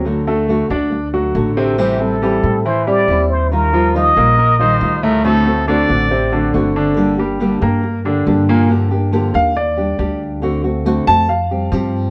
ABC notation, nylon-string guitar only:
X:1
M:4/4
L:1/8
Q:1/4=139
K:Gm
V:1 name="Nylon-string guitar"
[D,A,D^F] [A,DF] [D,A,DF] [A,DF] z [A,DF] [D,A,DF]2 | [=E,G,C=E] [G,CE] [E,G,CE] [G,CE] z [G,CE] [G,CE]2 | [E,G,EF] [G,EF] [E,G,EF] [G,EF] z [G,EF] [G,EF]2 | [D,A,C^F] [A,CF] [D,A,CF] [A,CF] z [A,CF] [D,A,CF]2 |
[D,G,B,DG] [B,DG] [D,G,B,DG] [B,DG] z [B,DG] [D,G,B,DG]2 | [D,F,B,DG] [B,DG] [D,F,B,DG] [B,DG] z [G,DG] [G,DG]2 | [D,A,C^F] [A,CF] [D,A,CF] [A,CF] z [G,CG] [=F,G,CG]2 |]